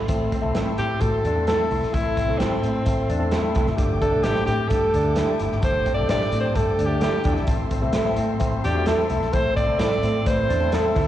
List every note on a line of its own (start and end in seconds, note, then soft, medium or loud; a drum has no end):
0.08 0.35 A1 medium
0.08 0.34 A3 medium
0.08 0.34 C4 medium
0.08 0.34 E4 medium
0.08 0.35 A4 medium
0.08 11.07 A4 medium
0.08 3.75 E5 soft
0.08 3.75 C6 medium
0.08 kick loud
0.08 closed hi-hat medium
0.32 0.52 C4 medium
0.32 kick medium
0.32 closed hi-hat medium
0.41 0.53 C2 medium
0.41 0.60 A3 medium
0.41 0.60 C4 medium
0.41 0.60 E4 medium
0.41 0.60 A4 loud
0.55 0.73 A1 medium
0.55 0.67 A3 medium
0.55 0.67 C4 medium
0.55 0.75 E4 medium
0.55 0.68 E4 medium
0.55 0.68 A4 medium
0.55 snare loud
0.55 closed hi-hat medium
0.65 0.91 A3 medium
0.65 0.92 C4 medium
0.65 0.92 E4 medium
0.65 0.92 A4 medium
0.78 0.96 A2 medium
0.78 0.98 C4 medium
0.78 1.02 G4 medium
0.78 closed hi-hat medium
1.00 1.19 A2 loud
1.00 1.27 A3 medium
1.00 1.26 C4 medium
1.00 1.26 E4 medium
1.00 1.27 F#4 medium
1.00 1.47 A4 loud
1.00 kick medium
1.00 closed hi-hat medium
1.24 1.50 E2 medium
1.24 1.44 D4 medium
1.24 closed hi-hat medium
1.35 1.53 A3 medium
1.35 1.53 C4 medium
1.35 1.53 E4 medium
1.35 1.53 A4 medium
1.47 1.59 A3 medium
1.47 1.60 C4 medium
1.47 1.67 E4 medium
1.47 1.60 E4 medium
1.47 1.95 A4 loud
1.47 1.60 A4 medium
1.47 snare loud
1.47 closed hi-hat medium
1.58 1.84 A3 medium
1.58 1.84 C4 medium
1.58 1.85 E4 medium
1.58 1.84 A4 medium
1.71 1.80 C2 medium
1.71 1.90 E4 medium
1.71 open hi-hat soft
1.83 1.92 A#1 medium
1.83 snare soft
1.93 2.20 A1 loud
1.93 2.19 A3 medium
1.93 2.19 C4 medium
1.93 2.19 E4 medium
1.93 2.40 E4 loud
1.93 2.19 A4 medium
1.93 kick loud
1.93 closed hi-hat medium
2.17 2.36 C4 medium
2.17 kick medium
2.17 closed hi-hat medium
2.28 2.37 C2 medium
2.28 2.46 A3 medium
2.28 2.46 C4 medium
2.28 2.46 E4 medium
2.28 2.46 A4 medium
2.38 2.58 A1 medium
2.38 2.52 A3 loud
2.38 3.55 C4 medium
2.38 2.52 C4 medium
2.38 2.59 E4 medium
2.38 2.52 E4 medium
2.38 2.53 A4 loud
2.38 snare loud
2.38 closed hi-hat medium
2.51 2.77 A3 medium
2.51 2.77 C4 medium
2.51 2.77 E4 medium
2.51 2.77 A4 medium
2.63 2.81 A2 medium
2.63 2.82 C4 medium
2.63 closed hi-hat medium
2.86 3.04 A2 loud
2.86 3.12 A3 medium
2.86 3.12 C4 medium
2.86 3.12 E4 medium
2.86 3.12 A4 medium
2.86 kick medium
2.86 closed hi-hat medium
3.09 3.35 E2 medium
3.09 3.29 D4 medium
3.09 closed hi-hat medium
3.19 3.37 A3 medium
3.19 3.37 C4 medium
3.19 3.37 E4 medium
3.19 3.37 A4 loud
3.31 3.44 A3 medium
3.31 3.44 C4 medium
3.31 3.51 E4 medium
3.31 3.44 E4 loud
3.31 3.45 A4 loud
3.31 snare loud
3.31 closed hi-hat medium
3.42 3.69 A3 medium
3.42 3.69 C4 medium
3.42 3.69 E4 medium
3.42 3.69 A4 medium
3.55 3.65 C2 medium
3.55 3.64 A3 medium
3.55 3.65 C4 medium
3.55 3.75 E4 medium
3.55 3.65 E4 medium
3.55 3.65 A4 medium
3.55 kick medium
3.55 closed hi-hat medium
3.67 3.76 G#1 medium
3.67 snare soft
3.77 4.05 G1 medium
3.77 4.03 A3 medium
3.77 4.03 D4 medium
3.77 4.03 G4 medium
3.77 4.04 A4 loud
3.77 7.44 G5 medium
3.77 7.44 D6 medium
3.77 kick loud
3.77 closed hi-hat medium
4.02 4.21 D4 medium
4.02 4.25 A4 loud
4.02 kick medium
4.02 closed hi-hat medium
4.12 4.22 B1 medium
4.12 4.30 A3 medium
4.12 4.30 D4 medium
4.12 4.30 G4 medium
4.12 4.30 A4 medium
4.24 4.42 A1 medium
4.24 4.36 A3 medium
4.24 4.37 D4 medium
4.24 4.44 E4 medium
4.24 4.46 G4 loud
4.24 4.37 G4 loud
4.24 4.37 A4 medium
4.24 snare loud
4.24 closed hi-hat medium
4.34 4.61 A3 medium
4.34 4.61 D4 medium
4.34 4.61 G4 medium
4.34 4.61 C5 medium
4.34 snare soft
4.46 4.65 A2 medium
4.46 4.67 C4 medium
4.46 4.70 G4 loud
4.46 closed hi-hat medium
4.68 4.88 G2 loud
4.68 4.96 A3 medium
4.68 4.96 D4 medium
4.68 4.96 G4 medium
4.68 5.39 A4 loud
4.68 4.96 A4 medium
4.68 kick medium
4.68 closed hi-hat medium
4.94 5.20 D2 loud
4.94 5.14 D4 medium
4.94 closed hi-hat medium
5.03 5.22 A3 medium
5.03 5.22 D4 medium
5.03 5.22 G4 medium
5.03 5.22 A4 medium
5.16 5.29 A3 medium
5.16 5.29 D4 medium
5.16 5.37 E4 medium
5.16 5.29 G4 medium
5.16 5.30 A4 medium
5.16 snare loud
5.16 closed hi-hat medium
5.26 5.53 A3 medium
5.26 5.53 D4 medium
5.26 5.53 G4 medium
5.26 5.54 A4 medium
5.39 5.49 G1 medium
5.39 5.60 E4 medium
5.39 closed hi-hat medium
5.52 5.61 G#1 medium
5.52 snare soft
5.61 5.89 G1 loud
5.61 5.88 A3 medium
5.61 5.88 D4 medium
5.61 5.88 G4 medium
5.61 5.88 A4 medium
5.61 5.92 C5 loud
5.61 kick loud
5.61 closed hi-hat medium
5.86 6.06 C4 medium
5.86 kick medium
5.86 closed hi-hat medium
5.94 6.07 B1 medium
5.94 6.14 A3 medium
5.94 6.14 D4 medium
5.94 6.14 G4 medium
5.94 6.15 A4 medium
5.94 6.09 D5 medium
6.09 6.27 A1 medium
6.09 6.21 A3 medium
6.09 6.22 D4 medium
6.09 6.29 E4 medium
6.09 6.22 G4 medium
6.09 6.22 A4 medium
6.09 6.39 D5 loud
6.09 snare loud
6.09 closed hi-hat medium
6.18 6.45 A3 medium
6.18 6.46 D4 medium
6.18 6.46 G4 medium
6.18 6.46 A4 medium
6.18 snare soft
6.32 6.50 A2 medium
6.32 6.52 C4 medium
6.32 closed hi-hat medium
6.41 6.58 C5 medium
6.54 6.73 G2 loud
6.54 6.81 A3 medium
6.54 6.81 D4 medium
6.54 6.81 G4 medium
6.54 6.81 A4 medium
6.54 6.88 A4 medium
6.54 kick medium
6.54 closed hi-hat medium
6.78 7.04 D2 medium
6.78 6.98 D4 medium
6.78 closed hi-hat medium
6.86 7.07 A3 medium
6.86 7.07 D4 medium
6.86 7.02 G4 medium
6.86 7.07 G4 medium
6.86 7.07 A4 medium
7.01 7.13 A3 medium
7.01 7.14 D4 medium
7.01 7.21 E4 medium
7.01 7.35 G4 medium
7.01 7.14 G4 loud
7.01 7.15 A4 medium
7.01 snare loud
7.01 closed hi-hat medium
7.12 7.38 A3 medium
7.12 7.39 D4 medium
7.12 7.39 G4 medium
7.12 7.39 A4 medium
7.24 7.34 E2 medium
7.24 7.34 A3 medium
7.24 7.44 D4 medium
7.24 7.35 D4 medium
7.24 7.35 G4 medium
7.24 7.35 A4 medium
7.24 kick loud
7.24 closed hi-hat medium
7.34 7.46 A#1 medium
7.34 7.57 E4 medium
7.34 snare soft
7.46 7.74 A1 loud
7.46 7.73 A3 medium
7.46 7.73 C4 medium
7.46 7.73 E4 medium
7.46 7.74 A4 medium
7.46 11.07 E5 medium
7.46 11.07 C6 medium
7.46 kick loud
7.46 closed hi-hat medium
7.71 7.90 C4 medium
7.71 kick medium
7.71 closed hi-hat medium
7.82 7.92 C2 medium
7.82 8.00 A3 medium
7.82 8.00 C4 medium
7.82 8.00 E4 medium
7.82 8.00 A4 medium
7.93 8.12 A1 loud
7.93 8.06 A3 medium
7.93 8.07 C4 medium
7.93 8.14 E4 medium
7.93 8.07 E4 medium
7.93 8.07 A4 medium
7.93 snare loud
7.93 closed hi-hat medium
8.05 8.32 A3 medium
8.05 8.32 C4 medium
8.05 8.32 E4 medium
8.05 8.32 A4 medium
8.05 snare soft
8.16 8.36 A2 medium
8.16 8.37 C4 medium
8.16 closed hi-hat medium
8.39 8.58 A2 loud
8.39 8.66 A3 medium
8.39 8.66 C4 medium
8.39 8.66 E4 medium
8.39 8.66 C5 loud
8.39 kick medium
8.39 closed hi-hat medium
8.64 8.90 E2 medium
8.64 8.84 D4 medium
8.64 8.88 G4 medium
8.64 closed hi-hat medium
8.74 8.92 A3 medium
8.74 8.92 C4 medium
8.74 8.92 E4 medium
8.74 8.92 F#4 medium
8.86 8.99 A3 medium
8.86 8.99 C4 loud
8.86 9.06 E4 medium
8.86 8.99 E4 loud
8.86 9.35 A4 medium
8.86 8.99 A4 loud
8.86 snare loud
8.86 closed hi-hat medium
8.98 9.24 A3 medium
8.98 9.24 C4 medium
8.98 9.24 E4 medium
8.98 9.24 A4 medium
9.10 9.19 C2 medium
9.10 9.30 E4 medium
9.10 closed hi-hat medium
9.21 9.30 A#1 medium
9.21 snare soft
9.33 9.60 A1 loud
9.33 9.59 A3 medium
9.33 9.59 C4 medium
9.33 9.59 E4 medium
9.33 9.59 A4 medium
9.33 9.56 C5 loud
9.33 kick loud
9.33 closed hi-hat medium
9.56 9.76 C4 medium
9.56 9.78 D5 loud
9.56 kick medium
9.56 closed hi-hat medium
9.67 9.77 C2 medium
9.67 9.85 A3 medium
9.67 9.85 C4 medium
9.67 9.85 E4 medium
9.67 9.85 A4 medium
9.78 9.97 A1 medium
9.78 9.91 A3 medium
9.78 9.91 C4 medium
9.78 9.92 E4 loud
9.78 9.99 E4 medium
9.78 9.92 A4 loud
9.78 10.29 D5 loud
9.78 snare loud
9.78 closed hi-hat medium
9.90 10.17 A3 medium
9.90 10.17 C4 medium
9.90 10.17 E4 medium
9.90 10.17 A4 medium
9.90 snare soft
10.03 10.21 A2 medium
10.03 10.22 C4 medium
10.03 closed hi-hat medium
10.25 10.44 A2 loud
10.25 10.51 A3 medium
10.25 10.52 C4 medium
10.25 10.52 E4 medium
10.25 10.52 B4 medium
10.25 10.75 C5 loud
10.25 kick medium
10.25 closed hi-hat medium
10.49 10.76 E2 medium
10.49 10.68 D4 medium
10.49 closed hi-hat medium
10.60 10.78 A3 medium
10.60 10.78 C4 medium
10.60 10.78 E4 medium
10.60 10.78 A4 medium
10.72 10.84 A3 medium
10.72 10.85 C4 medium
10.72 10.91 E4 medium
10.72 10.85 E4 medium
10.72 11.07 A4 loud
10.72 10.85 A4 loud
10.72 snare loud
10.72 closed hi-hat medium
10.83 11.07 A3 medium
10.83 11.07 C4 medium
10.83 11.07 E4 medium
10.83 11.07 A4 medium
10.95 11.05 D2 medium
10.95 11.05 A3 medium
10.95 11.05 C4 medium
10.95 11.07 E4 medium
10.95 11.05 E4 medium
10.95 11.06 A4 medium
10.95 kick medium
10.95 open hi-hat medium